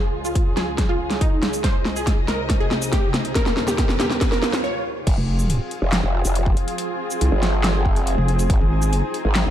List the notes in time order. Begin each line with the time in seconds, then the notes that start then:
Already playing: C#2 C#3 G#3 F4 G#4 G#5, riser
0.25 F4, shaker
0.35 kick, closed hi-hat
0.57 G#4, snare, closed hi-hat
0.78 kick, snare, closed hi-hat
0.89 F4
1.11 snare, closed hi-hat
1.21 D#4, kick, closed hi-hat
1.43 snare, closed hi-hat
1.53 closed hi-hat, shaker
1.64 C2 C3 D#4 C5 D#5, kick, snare, closed hi-hat
1.78 C5
1.85 snare
1.96 D#4 G#4, shaker
2.07 kick, snare, closed hi-hat
2.28 A#4, snare, closed hi-hat
2.50 kick, snare, closed hi-hat
2.60 G#4
2.71 snare
2.82 closed hi-hat, shaker
2.93 G4, kick, snare, closed hi-hat
3.14 snare, closed hi-hat
3.25 closed hi-hat
3.35 D#2 A#2 G3 A#4, kick, snare, closed hi-hat
3.46 snare
3.57 snare
3.68 G4, snare, shaker
3.78 kick, snare, closed hi-hat
3.89 snare
4.00 G4, snare, closed hi-hat
4.11 snare
4.21 kick, snare, closed hi-hat, swell
4.32 A#4, snare
4.43 snare
4.53 snare, closed hi-hat
4.64 C#5
5.07 F1 C4 F4 G#4, kick, closed hi-hat, crash
5.18 F1
5.39 G#4, shaker
5.50 closed hi-hat
5.71 closed hi-hat
5.82 F1
5.93 C5, snare, clap, closed hi-hat
6.03 F1
6.25 F1, closed hi-hat, shaker
6.30 G#5
6.35 closed hi-hat
6.46 kick
6.57 closed hi-hat
6.68 closed hi-hat
6.78 closed hi-hat
7.11 shaker
7.21 C2, closed hi-hat
7.32 G1
7.43 snare, closed hi-hat
7.64 snare, clap, closed hi-hat
7.85 kick
7.91 F#1
7.96 closed hi-hat
8.07 closed hi-hat
8.18 F1
8.28 closed hi-hat
8.39 closed hi-hat, shaker
8.50 G#1 D#4, kick, closed hi-hat
8.61 G#1
8.82 shaker
8.93 closed hi-hat
9.14 closed hi-hat
9.25 G#1
9.36 snare, clap, closed hi-hat
9.46 G#1